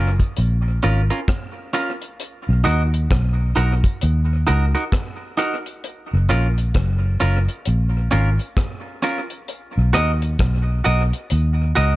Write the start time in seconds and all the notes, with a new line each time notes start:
Already playing: F#1 A#4
0.20 kick, closed hi-hat
0.37 A#1, closed hi-hat
0.83 G#1 C#4 F4 A#4, closed hi-hat
1.10 C#4 F4 A#4, closed hi-hat
1.28 kick, cross-stick, closed hi-hat
1.73 C#4 F4 A#4, closed hi-hat
2.02 closed hi-hat
2.20 closed hi-hat
2.49 B1
2.64 D#2 D#4 F#4 A#4, closed hi-hat
2.94 closed hi-hat
3.10 B1, kick, cross-stick, closed hi-hat
3.56 B1 D#4 F#4 A#4, closed hi-hat
3.84 kick, closed hi-hat
4.01 D#2, closed hi-hat
4.47 C#2 D#4 F#4 A#4, closed hi-hat
4.75 D#4 F#4 A#4, closed hi-hat
4.92 kick, cross-stick, closed hi-hat
5.37 D#4 F#4 A#4, closed hi-hat
5.66 closed hi-hat
5.84 closed hi-hat
6.13 F#1
6.29 A#1 C#4 F4 A#4, closed hi-hat
6.58 closed hi-hat
6.74 F#1, kick, cross-stick, closed hi-hat
7.20 F#1 C#4 F4 A#4, closed hi-hat
7.49 closed hi-hat
7.66 A#1, closed hi-hat
8.11 G#1 C#4 F4 A#4, closed hi-hat
8.39 closed hi-hat
8.57 kick, cross-stick, closed hi-hat
9.02 C#4 F4 A#4, closed hi-hat
9.30 closed hi-hat
9.48 closed hi-hat
9.78 B1
9.93 D#2 F#4 A#4 D#5, cross-stick, closed hi-hat
10.22 closed hi-hat
10.39 B1, kick, cross-stick, closed hi-hat
10.84 B1 F#4 A#4 D#5, closed hi-hat
11.13 closed hi-hat
11.30 D#2, closed hi-hat
11.75 C#2 F#4 A#4 D#5, closed hi-hat